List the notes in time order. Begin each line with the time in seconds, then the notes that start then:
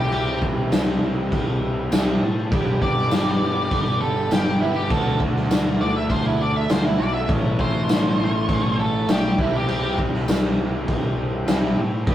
Already playing: C3 E3 G3 C4 E4 G4 C5
0.00 G4
0.11 C2 G4, crash
0.42 C2, kick
0.71 C2, snare, tambourine, crash
0.88 snare
1.01 C2
1.32 C2, kick, crash
1.62 E5
1.91 C2 C3 E3 G3 G5, snare, tambourine, crash
1.95 C4 E4
2.21 A2 A5
2.50 G1 G2 D3 G3 B3 D4 G4 B4, kick, crash
2.54 G4
2.82 G1 D5, kick
2.98 snare
3.11 G1, snare, tambourine, crash
3.28 snare
3.40 G1
3.71 G1, kick, crash
4.01 G1 A4
4.31 G1 G4, snare, tambourine, crash
4.60 G1 G3 B3 D4 E4 G4
4.64 G2 D3
4.76 G4
4.90 D2 D3 A3 D4 F#4 A4, kick, crash
4.94 F#4
5.20 D2, kick
5.36 snare
5.50 D2, snare, tambourine, crash
5.80 D2 D5
5.96 E5
6.10 D2 C5, kick, crash
6.26 E4
6.41 D5
6.56 E5
6.69 D2 C5, snare, tambourine, crash
6.85 E4
6.98 B1 A3 D4 F#4 D5
7.02 D3
7.14 E5
7.28 A1 A2 E3 A3 C#4 E4 A4, kick, crash
7.33 C#4 E4
7.59 A1 C5, kick
7.88 A1, snare, tambourine, crash
8.18 A1
8.49 A1, kick, crash
8.79 A1 A4
9.08 B1 G4, snare, tambourine, crash
9.38 C2 C3 E3 G3 C4 E4 G4 C5, kick
9.43 E4
9.56 G4
9.68 C2 G4, crash
9.98 C2, kick
10.14 snare
10.27 C2, snare, tambourine, crash
10.44 snare
10.58 C2
10.88 C2, kick, crash
11.47 C2 C3 E3 G3, snare, tambourine, crash
11.51 C4 E4
11.77 A2
12.07 G1 G2 D3 G3 B3 D4 G4 B4, kick, crash
12.11 G4